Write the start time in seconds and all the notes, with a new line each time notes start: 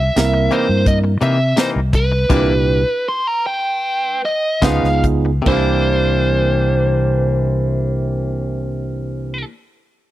Already playing: E5
0.16 C2 A#3 C4 E4 A#4, muted clean electric guitar stroke, snare, closed hi-hat, tambourine
0.34 muted clean electric guitar stroke
0.51 C3 E3 A#3 D#4 C5, closed hi-hat
0.69 G2, muted clean electric guitar stroke
0.86 D#5, kick, closed hi-hat
1.04 muted clean electric guitar stroke
1.21 C3 E3 A#3 D#4 E5, closed hi-hat
1.39 muted clean electric guitar stroke
1.57 C3 E3 A#3 D#4 C5, snare, closed hi-hat, tambourine
1.76 C2
1.93 B4, muted clean electric guitar stroke, kick, closed hi-hat
2.12 muted clean electric guitar stroke
2.29 C2 A#2 C3 E3 A#3 D4 E4 G4, kick, closed hi-hat, crash
3.08 C6
3.27 A#5
3.47 G5
4.25 D#5
4.62 C#2 C#3 F3 B3 D#4 F4 G#4 F5, kick, snare, closed hi-hat, tambourine
4.83 C#2, snare
5.03 muted clean electric guitar stroke, kick, closed hi-hat
5.25 muted clean electric guitar stroke
5.42 C3 A#3 D4
5.46 C2 E3 E4 G4 C5, kick, crash
5.52 A#3
5.56 D4